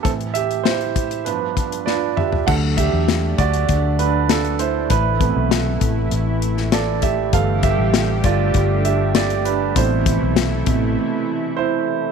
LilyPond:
<<
  \new Staff \with { instrumentName = "Grand piano" } { \time 4/4 \key a \minor \tempo 4 = 99 a'8 <g' e''>8 <e' c''>4 <d' b'>4 <d' f' b' d''>8 <g' e''>8 | <a' fis''>8 <g' e''>4 <fis' d''>4 <d' b'>8 <d' a'>8 <e' c''>8 | <e' b'>2. <a' d''>8 <g' e''>8 | <a' f''>8 <g' e''>4 <f' d''>4 <g' e''>8 <g' d''>8 <d' b'>8 |
<e' c''>2. <e' c''>4 | }
  \new Staff \with { instrumentName = "Grand piano" } { \clef bass \time 4/4 \key a \minor <a, e c'>8 r4. <g, f b>4. r8 | <d fis a>8 r2. r8 | r8 <c a b>8 r2. | <g a b>4. r2 r8 |
<b, c a>8 r4 <b, c a>8 r2 | }
  \new Staff \with { instrumentName = "Analog synth pad" } { \time 4/4 \key a \minor << { r1 | <d d'>1 | <e e'>1 | <d g a g'>1 |
<e a e'>1 | } \\ { r1 | a1~ | a1 | r1 |
r1 | } >> }
  \new Staff \with { instrumentName = "Fingered electric bass" } { \clef bass \time 4/4 \key a \minor r1 | d,8. e,8. d,8 d,2 | a,,8. b,,8. a,,8 a,,2 | g,,8. a,,8. g,,8 g,,2 |
a,,8. b,,8. a,,8 r2 | }
  \new DrumStaff \with { instrumentName = "Drums" } \drummode { \time 4/4 <hh bd>16 hh16 hh16 hh16 sn16 hh16 <hh bd>16 hh16 hh8 <hh bd>16 hh16 sn8 toml16 tomfh16 | <cymc bd>8 <hh bd>8 <hh sn>8 <hh bd>16 hh16 <hh bd>8 hh8 <hh sn>16 hh16 hh8 | <hh bd>8 <hh bd>8 <hh sn>8 <hh bd>8 hh8 hh16 sn16 <hh sn>8 <hh bd>8 | <hh bd>8 <hh bd>8 <hh sn>8 <hh bd>8 <hh bd>8 hh8 <hh sn>16 hh16 hh8 |
<hh bd>8 <hh bd>8 <hh sn>8 <hh bd>8 r4 r4 | }
>>